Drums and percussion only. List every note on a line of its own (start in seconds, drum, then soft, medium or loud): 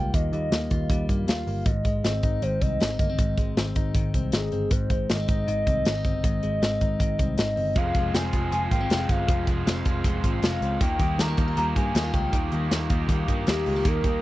0.14 kick loud
0.14 closed hi-hat medium
0.33 closed hi-hat medium
0.52 snare medium
0.52 closed hi-hat medium
0.71 kick medium
0.71 closed hi-hat medium
0.90 kick medium
0.90 closed hi-hat medium
1.09 kick medium
1.09 closed hi-hat medium
1.28 snare loud
1.28 closed hi-hat medium
1.47 open hi-hat medium
1.66 kick loud
1.66 closed hi-hat medium
1.85 kick medium
1.85 closed hi-hat medium
2.04 snare medium
2.04 closed hi-hat medium
2.23 kick medium
2.23 closed hi-hat medium
2.42 closed hi-hat medium
2.62 kick medium
2.62 closed hi-hat medium
2.80 snare loud
2.80 closed hi-hat medium
2.99 kick medium
2.99 closed hi-hat medium
3.18 kick medium
3.18 closed hi-hat medium
3.38 kick medium
3.38 closed hi-hat medium
3.57 snare loud
3.57 closed hi-hat medium
3.76 kick medium
3.76 closed hi-hat medium
3.95 kick medium
3.95 closed hi-hat medium
4.14 kick medium
4.14 closed hi-hat medium
4.32 snare loud
4.32 closed hi-hat medium
4.52 closed hi-hat medium
4.71 kick medium
4.71 closed hi-hat medium
4.90 kick medium
4.90 closed hi-hat medium
5.10 snare medium
5.10 closed hi-hat medium
5.28 kick medium
5.28 closed hi-hat medium
5.48 closed hi-hat medium
5.67 kick medium
5.67 closed hi-hat medium
5.85 snare loud
5.85 closed hi-hat medium
6.05 kick medium
6.05 closed hi-hat medium
6.24 kick loud
6.24 closed hi-hat medium
6.43 closed hi-hat medium
6.63 snare medium
6.63 closed hi-hat medium
6.81 kick medium
6.81 closed hi-hat medium
7.00 kick medium
7.00 closed hi-hat medium
7.19 kick medium
7.19 closed hi-hat medium
7.38 snare loud
7.38 closed hi-hat medium
7.57 open hi-hat medium
7.76 kick medium
7.76 closed hi-hat medium
7.95 kick medium
7.95 closed hi-hat medium
8.14 snare medium
8.14 closed hi-hat medium
8.33 kick medium
8.33 closed hi-hat medium
8.52 closed hi-hat medium
8.71 kick medium
8.71 closed hi-hat medium
8.90 snare loud
8.90 closed hi-hat medium
9.09 kick medium
9.09 closed hi-hat medium
9.28 kick loud
9.28 closed hi-hat medium
9.47 kick medium
9.47 closed hi-hat medium
9.67 snare medium
9.67 closed hi-hat medium
9.85 kick medium
9.85 closed hi-hat medium
10.04 kick medium
10.04 closed hi-hat medium
10.24 kick medium
10.24 closed hi-hat medium
10.43 snare loud
10.43 closed hi-hat medium
10.62 closed hi-hat medium
10.81 kick loud
10.81 closed hi-hat medium
10.99 kick medium
10.99 closed hi-hat medium
11.19 snare loud
11.19 closed hi-hat medium
11.37 kick medium
11.37 closed hi-hat medium
11.57 closed hi-hat medium
11.76 kick medium
11.76 closed hi-hat medium
11.95 snare loud
11.95 closed hi-hat medium
12.14 kick medium
12.14 closed hi-hat medium
12.33 kick medium
12.33 closed hi-hat medium
12.52 closed hi-hat medium
12.71 snare medium
12.71 closed hi-hat medium
12.90 kick medium
12.90 closed hi-hat medium
13.09 kick medium
13.09 closed hi-hat medium
13.28 kick medium
13.28 closed hi-hat medium
13.47 snare loud
13.47 closed hi-hat medium
13.66 open hi-hat medium
13.85 kick loud
13.85 closed hi-hat medium
14.04 kick medium
14.04 closed hi-hat medium